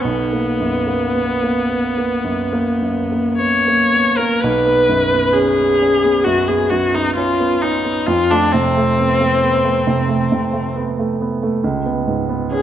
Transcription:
0.02 2.19 B1 soft
0.02 3.38 B3 medium
0.33 0.76 A#3 soft
0.60 1.04 F#2 soft
0.87 1.30 A#3 soft
1.15 1.42 B3 soft
1.43 1.85 A#3 soft
1.70 1.96 B3 soft
1.97 2.41 A#3 soft
2.24 2.69 F#2 soft
2.52 2.99 A#3 soft
2.82 3.28 F#2 soft
3.12 3.56 A#3 soft
3.38 3.66 B3 soft
3.38 4.18 C#5 medium
3.68 4.09 A#3 soft
3.94 4.18 B3 soft
4.17 4.42 A#3 soft
4.17 4.42 A#4 soft
4.41 6.22 B1 soft
4.41 5.34 B4 medium
4.66 5.03 B3 soft
4.89 5.26 F#2 soft
5.14 5.49 B3 soft
5.33 5.58 C#4 soft
5.33 6.25 G#4 medium
5.59 5.94 B3 soft
5.82 6.03 C#4 soft
6.04 6.39 B3 soft
6.24 6.62 F#2 soft
6.24 6.49 F#4 medium
6.48 6.85 B3 soft
6.48 6.71 G#4 medium
6.70 7.08 F#2 soft
6.70 6.96 F#4 medium
6.94 7.31 B3 soft
6.94 7.15 D#4 medium
7.16 7.40 C#4 soft
7.16 7.63 F4 medium
7.40 7.76 B3 soft
7.62 7.85 C#4 soft
7.62 8.08 D#4 medium
7.85 8.08 B3 soft
8.06 9.83 F2 soft
8.06 8.32 F4 medium
8.31 8.67 A3 soft
8.31 8.54 D4 medium
8.52 8.90 C3 soft
8.52 10.76 C4 medium
8.77 9.12 A3 soft
8.99 9.21 B3 soft
9.21 9.56 A3 soft
9.43 9.65 B3 soft
9.65 10.00 A3 soft
9.87 10.23 C3 soft
10.09 10.45 A3 soft
10.32 10.68 C3 soft
10.53 10.89 A3 soft
10.76 10.98 B3 soft
10.99 11.34 A3 soft
11.21 11.43 B3 soft
11.43 11.64 A3 soft
11.64 12.62 C#2 soft
11.86 12.20 B3 soft
12.06 12.42 G#2 soft
12.29 12.62 B3 soft
12.52 12.62 C#4 soft
12.52 12.62 G#4 medium

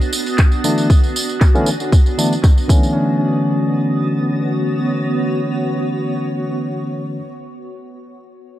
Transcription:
0.00 2.68 B3 medium
0.00 2.69 D4 medium
0.00 2.69 F#4 medium
0.00 closed hi-hat soft
0.00 tambourine soft
0.13 open hi-hat loud
0.13 tambourine loud
0.26 closed hi-hat soft
0.26 tambourine soft
0.38 kick loud
0.38 clap loud
0.38 closed hi-hat medium
0.38 tambourine medium
0.52 tambourine soft
0.64 0.87 D3 medium
0.64 0.87 E3 medium
0.64 0.87 A3 medium
0.64 0.87 B3 medium
0.64 0.87 D4 medium
0.64 open hi-hat loud
0.64 tambourine loud
0.78 closed hi-hat soft
0.78 tambourine soft
0.90 kick loud
0.90 closed hi-hat medium
0.90 tambourine soft
1.03 tambourine soft
1.16 open hi-hat loud
1.16 tambourine medium
1.29 closed hi-hat soft
1.29 tambourine soft
1.41 kick loud
1.41 clap loud
1.41 tambourine soft
1.55 1.68 D3 medium
1.55 1.68 E3 medium
1.55 1.68 A3 medium
1.55 1.68 B3 medium
1.55 1.68 C#4 loud
1.55 tambourine soft
1.66 open hi-hat loud
1.66 tambourine medium
1.80 tambourine soft
1.92 kick loud
1.92 tambourine medium
2.06 closed hi-hat soft
2.06 tambourine soft
2.18 2.33 D3 medium
2.18 2.33 E3 medium
2.18 2.33 A3 medium
2.18 2.33 B3 medium
2.18 2.33 D4 medium
2.18 open hi-hat loud
2.18 tambourine medium
2.33 tambourine soft
2.44 kick loud
2.44 clap loud
2.44 tambourine soft
2.58 tambourine soft
2.68 7.18 D3 medium
2.68 7.19 E3 medium
2.68 7.19 A3 medium
2.68 7.19 B3 medium
2.68 7.20 B3 medium
2.68 7.20 C#4 medium
2.68 kick loud
2.68 tambourine medium
2.78 7.28 F#4 medium
2.83 tambourine soft
3.11 7.61 C#5 medium

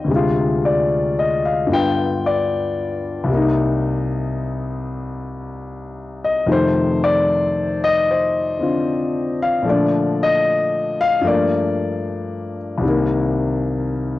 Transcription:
0.00 0.13 D3 medium
0.00 0.11 D#3 soft
0.00 0.11 G3 soft
0.00 0.11 C4 soft
0.00 0.11 D#5 medium
0.00 0.11 F5 medium
0.00 0.11 G5 medium
0.04 1.66 D2 medium
0.04 1.68 C3 medium
0.11 1.70 G#3 medium
0.11 1.71 F4 medium
0.65 1.13 D5 medium
1.19 1.43 D#5 medium
1.45 1.70 F5 medium
1.67 3.27 G2 medium
1.67 3.28 D3 medium
1.67 3.29 B3 soft
1.72 3.30 F4 medium
1.72 2.21 G5 medium
2.26 2.52 D5 medium
3.24 6.44 C2 medium
3.28 6.45 C3 medium
3.28 6.48 A#3 medium
3.35 6.50 D#4 medium
6.24 6.47 D#5 medium
6.46 9.65 F2 medium
6.46 9.65 C3 medium
6.46 9.65 D#3 medium
6.46 9.64 A3 medium
6.52 7.03 C5 medium
7.04 7.78 D5 medium
7.84 8.06 D#5 loud
8.11 9.39 C5 medium
8.59 9.64 D3 soft
8.59 9.65 C4 soft
8.59 9.66 F4 soft
9.43 9.65 F5 medium
9.63 11.22 A#2 medium
9.63 11.22 F3 medium
9.63 11.23 A3 medium
9.68 11.25 D3 medium
9.68 10.20 D5 medium
10.23 10.97 D#5 medium
11.01 11.24 F5 loud
11.21 12.81 G2 medium
11.21 12.82 F3 soft
11.21 12.83 A3 soft
11.27 12.84 A#3 medium
11.27 12.56 D5 medium
12.77 14.19 C2 medium
12.77 14.19 C3 medium
12.85 14.19 D#3 medium
12.85 14.19 A#3 medium

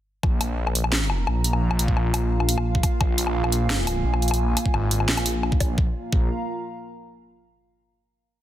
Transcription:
0.22 1.26 A#1 loud
0.22 5.77 A#3 medium
0.22 kick loud
0.22 low woodblock medium
0.30 5.77 F4 medium
0.41 closed hi-hat medium
0.41 low woodblock medium
0.51 5.78 F5 medium
0.67 low woodblock medium
0.74 3.26 A#5 medium
0.74 closed hi-hat medium
0.84 low woodblock medium
0.92 snare loud
1.10 low woodblock medium
1.27 1.78 A#1 loud
1.27 low woodblock medium
1.44 closed hi-hat medium
1.53 low woodblock medium
1.71 low woodblock medium
1.79 2.82 A#1 loud
1.79 closed hi-hat medium
1.88 kick medium
1.97 low woodblock medium
2.14 closed hi-hat medium
2.14 low woodblock medium
2.40 low woodblock medium
2.49 closed hi-hat medium
2.58 low woodblock medium
2.75 kick medium
2.83 kick loud
2.83 closed hi-hat medium
2.83 low woodblock medium
3.00 4.03 A#1 loud
3.00 kick loud
3.00 low woodblock medium
3.16 5.78 G#5 medium
3.16 closed hi-hat medium
3.27 low woodblock medium
3.44 low woodblock medium
3.52 closed hi-hat medium
3.70 snare loud
3.70 low woodblock medium
3.87 closed hi-hat medium
3.87 low woodblock medium
4.04 4.55 A#1 loud
4.14 low woodblock medium
4.22 closed hi-hat soft
4.28 closed hi-hat soft
4.28 low woodblock medium
4.34 closed hi-hat medium
4.57 closed hi-hat medium
4.57 low woodblock soft
4.66 kick medium
4.74 5.07 G#1 loud
4.74 low woodblock medium
4.91 closed hi-hat medium
5.00 low woodblock soft
5.08 5.76 A#1 loud
5.08 snare loud
5.17 closed hi-hat soft
5.17 low woodblock medium
5.26 closed hi-hat medium
5.43 low woodblock medium
5.52 kick medium
5.60 kick loud
5.60 closed hi-hat medium
5.60 low woodblock medium
5.78 5.88 A#1 loud
5.78 7.13 A#3 medium
5.78 kick loud
5.84 7.13 F4 medium
5.89 7.13 F5 medium
5.93 7.13 A#5 medium
6.12 6.29 A#1 loud
6.12 kick loud

